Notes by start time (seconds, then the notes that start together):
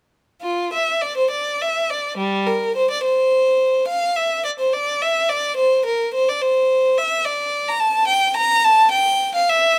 0.42 F4
0.73 E5
1.02 D5
1.17 C5
1.31 D5
1.61 E5
1.90 D5
2.17 G3
2.46 A#4
2.76 C5
2.91 D5
3.04 C5
3.88 F5
4.16 E5
4.45 D5
4.59 C5
4.73 D5
5.02 E5
5.29 D5
5.57 C5
5.86 A#4
6.14 C5
6.29 D5
6.42 C5
6.98 E5
7.25 D5
7.68 A#5
7.80 A5
8.07 G5
8.37 A#5
8.64 A5
8.91 G5
9.35 F5
9.50 E5